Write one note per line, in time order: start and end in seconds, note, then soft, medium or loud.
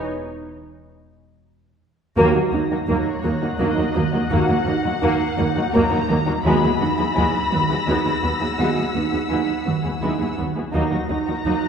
2.16 2.33 D#2 medium
2.16 2.38 D#3 loud
2.16 2.34 F#3 medium
2.16 2.50 A#3 medium
2.16 2.33 A#3 medium
2.16 2.34 A#3 medium
2.16 2.50 F#4 medium
2.16 6.06 A#6 soft
2.34 2.42 D#2 soft
2.34 2.42 F#3 soft
2.34 2.42 A#3 soft
2.34 2.41 D#4 soft
2.34 2.41 F#4 soft
2.53 2.60 D#2 soft
2.53 2.60 F#3 soft
2.53 2.60 A#3 soft
2.53 2.74 D#4 medium
2.53 2.60 D#4 soft
2.70 2.78 D#2 soft
2.70 2.78 F#3 soft
2.70 2.78 A#3 soft
2.70 2.78 D#4 soft
2.70 2.78 F#4 soft
2.88 2.96 D#2 medium
2.88 3.05 F#3 soft
2.88 3.05 A#3 medium
2.88 3.05 A#3 soft
2.88 3.10 D#4 medium
2.88 3.56 C#5 medium
2.88 5.27 F#6 soft
3.24 3.31 D#2 soft
3.24 3.45 D#3 medium
3.24 3.31 F#3 soft
3.24 3.31 A#3 soft
3.24 3.31 D#4 soft
3.41 3.49 D#2 soft
3.41 3.49 F#3 soft
3.41 3.49 A#3 soft
3.41 3.49 D#4 soft
3.41 3.49 F#4 soft
3.59 3.67 D#2 medium
3.59 3.76 F#3 medium
3.59 3.76 A#3 medium
3.59 3.81 D#4 medium
3.59 4.32 D#5 medium
3.77 3.85 D#2 soft
3.77 3.84 F#3 soft
3.77 3.84 A#3 medium
3.77 3.84 D#4 soft
3.77 3.84 F#4 soft
3.95 4.03 D#2 soft
3.95 4.17 D#3 medium
3.95 4.03 F#3 soft
3.95 4.02 A#3 medium
3.95 4.03 A#3 medium
3.95 4.02 D#4 soft
4.12 4.20 D#2 soft
4.12 4.21 F#3 soft
4.12 4.21 A#3 soft
4.12 4.19 D#4 soft
4.12 4.19 F#4 soft
4.30 4.38 D#2 medium
4.30 4.52 D#3 medium
4.30 4.48 F#3 medium
4.30 4.47 A#3 medium
4.30 4.48 A#3 medium
4.30 4.57 A#3 medium
4.30 4.57 F#4 medium
4.30 5.71 F#5 medium
4.48 4.56 D#2 soft
4.48 4.57 F#3 soft
4.48 4.57 A#3 soft
4.48 4.55 D#4 soft
4.48 4.55 F#4 soft
4.65 4.74 D#2 soft
4.65 4.75 F#3 soft
4.65 4.73 A#3 soft
4.65 4.75 A#3 soft
4.65 4.73 D#4 soft
4.65 4.88 D#4 medium
4.83 4.92 D#2 medium
4.83 4.93 F#3 soft
4.83 4.93 A#3 soft
4.83 4.91 D#4 soft
4.83 4.91 F#4 medium
5.02 5.10 D#2 medium
5.02 5.20 F#3 medium
5.02 5.19 A#3 medium
5.02 5.20 A#3 medium
5.02 5.24 D#4 medium
5.27 6.06 G6 soft
5.38 5.45 D#2 medium
5.38 5.46 D#2 soft
5.38 5.59 D#3 medium
5.38 5.46 F#3 medium
5.38 5.45 A#3 soft
5.38 5.46 A#3 medium
5.38 5.45 D#4 medium
5.56 5.63 D#2 soft
5.56 5.64 F#3 medium
5.56 5.64 A#3 soft
5.56 5.63 D#4 soft
5.56 5.63 F#4 soft
5.73 5.81 D#2 medium
5.73 5.82 D#2 medium
5.73 5.91 F#3 medium
5.73 5.91 A#3 medium
5.73 5.95 D#4 medium
5.73 6.45 A#5 medium
5.91 5.99 D#2 medium
5.91 6.00 F#3 medium
5.91 6.00 A#3 medium
5.91 5.98 D#4 medium
5.91 5.98 F#4 medium
6.08 6.17 D#2 soft
6.08 6.30 D#3 medium
6.08 6.17 F#3 medium
6.08 6.16 A#3 medium
6.08 6.17 A#3 medium
6.08 6.16 D#4 medium
6.27 6.35 D#2 soft
6.27 6.35 F#3 medium
6.27 6.35 A#3 soft
6.27 6.34 D#4 medium
6.27 6.34 F#4 medium
6.44 6.52 D#2 medium
6.44 6.53 D#2 medium
6.44 6.67 D#3 medium
6.44 6.62 F#3 medium
6.44 6.70 G#3 medium
6.44 6.62 G#3 medium
6.44 6.62 B3 medium
6.44 6.61 E4 medium
6.44 6.70 F#4 medium
6.44 8.55 B5 medium
6.44 10.34 E6 soft
6.44 8.84 A#6 soft
6.62 6.71 D#2 soft
6.62 6.71 F#3 soft
6.62 6.71 B3 soft
6.62 6.69 E4 soft
6.62 6.70 G#4 soft
6.80 6.88 D#2 soft
6.80 6.88 F#3 soft
6.80 6.87 B3 soft
6.80 6.88 B3 soft
6.80 7.02 D#4 medium
6.80 6.87 F#4 soft
6.97 7.06 D#2 soft
6.97 7.06 F#3 soft
6.97 7.06 B3 soft
6.97 7.05 E4 soft
6.97 7.05 G#4 soft
7.15 7.24 D#2 medium
7.15 7.33 F#3 soft
7.15 7.32 G#3 medium
7.15 7.33 B3 soft
7.15 7.38 D#4 soft
7.15 7.32 E4 medium
7.51 7.60 D#2 soft
7.51 7.74 D#3 medium
7.51 7.60 F#3 soft
7.51 7.58 B3 soft
7.51 7.60 B3 soft
7.51 7.58 F#4 soft
7.68 7.78 D#2 soft
7.68 7.77 F#3 soft
7.68 7.77 B3 soft
7.68 7.76 E4 soft
7.68 7.76 G#4 soft
7.86 7.95 D#2 medium
7.86 7.95 D#2 soft
7.86 8.04 F#3 soft
7.86 8.04 G#3 soft
7.86 8.05 B3 soft
7.86 8.09 D#4 soft
7.86 8.03 E4 medium
8.05 8.13 D#2 soft
8.05 8.12 F#3 soft
8.05 8.13 B3 soft
8.05 8.12 E4 soft
8.05 8.12 G#4 soft
8.22 8.31 D#2 soft
8.22 8.45 D#3 soft
8.22 8.30 F#3 soft
8.22 8.30 B3 soft
8.22 8.30 F#4 soft
8.40 8.49 D#2 soft
8.40 8.48 F#3 soft
8.40 8.48 B3 soft
8.40 8.48 E4 soft
8.40 8.47 G#4 soft
8.59 8.66 D#2 soft
8.59 8.67 D#2 soft
8.59 8.81 D#3 medium
8.59 8.76 F#3 soft
8.59 8.76 G#3 soft
8.59 8.84 G#3 soft
8.59 8.76 B3 soft
8.59 8.75 E4 soft
8.59 8.84 F#4 soft
8.59 10.34 F#5 medium
8.75 8.84 D#2 soft
8.75 8.84 F#3 soft
8.75 8.84 B3 soft
8.75 8.83 E4 soft
8.75 8.83 G#4 soft
8.84 9.63 B6 soft
8.93 9.02 D#2 soft
8.93 9.02 F#3 soft
8.93 9.01 B3 soft
8.93 9.02 B3 soft
8.93 9.17 D#4 medium
8.93 9.01 F#4 soft
9.11 9.20 D#2 soft
9.11 9.20 F#3 soft
9.11 9.20 B3 soft
9.11 9.19 E4 soft
9.11 9.18 G#4 soft
9.29 9.38 D#2 soft
9.29 9.47 F#3 soft
9.29 9.46 G#3 soft
9.29 9.47 B3 soft
9.29 9.53 D#4 medium
9.29 9.47 E4 soft
9.65 9.74 D#2 soft
9.65 9.88 D#3 medium
9.65 9.73 F#3 soft
9.65 9.73 B3 soft
9.65 9.73 F#4 soft
9.83 9.92 D#2 soft
9.83 9.92 F#3 soft
9.83 9.92 B3 soft
9.83 9.90 E4 soft
9.83 9.90 G#4 soft
10.02 10.10 D#2 soft
10.02 10.19 F#3 soft
10.02 10.19 G#3 soft
10.02 10.19 B3 soft
10.02 10.24 D#4 soft
10.02 10.18 E4 soft
10.19 10.28 D#2 soft
10.19 10.27 F#3 soft
10.19 10.27 B3 soft
10.19 10.27 E4 soft
10.19 10.26 G#4 soft
10.37 10.46 D#2 soft
10.37 10.59 D#3 soft
10.37 10.46 F#3 soft
10.37 10.45 B3 soft
10.37 10.46 B3 soft
10.37 10.45 F#4 soft
10.55 10.63 D#2 soft
10.55 10.63 F#3 soft
10.55 10.63 B3 soft
10.55 10.62 E4 soft
10.55 10.63 G#4 soft
10.73 10.81 D#2 soft
10.73 10.82 D#2 soft
10.73 10.96 D#3 medium
10.73 10.90 F#3 soft
10.73 10.90 A#3 medium
10.73 10.99 A#3 soft
10.73 10.90 D#4 medium
10.73 10.90 D#4 soft
10.73 10.99 F#4 soft
10.73 11.68 A#6 soft
10.90 10.99 D#2 soft
10.90 10.99 F#3 soft
10.90 10.99 D#4 soft
10.90 10.98 F#4 soft
10.90 10.98 A#4 soft
11.09 11.16 D#2 soft
11.09 11.17 D#2 soft
11.09 11.17 F#3 soft
11.09 11.31 D#4 medium
11.09 11.16 D#4 soft
11.09 11.17 D#4 soft
11.09 11.16 F#4 soft
11.09 11.68 A#5 medium
11.26 11.35 D#2 soft
11.26 11.35 F#3 soft
11.26 11.35 D#4 soft
11.26 11.34 F#4 soft
11.26 11.34 A#4 soft
11.44 11.52 D#2 soft
11.44 11.62 F#3 soft
11.44 11.62 A#3 soft
11.44 11.67 D#4 medium
11.44 11.62 D#4 soft
11.44 11.68 F#6 soft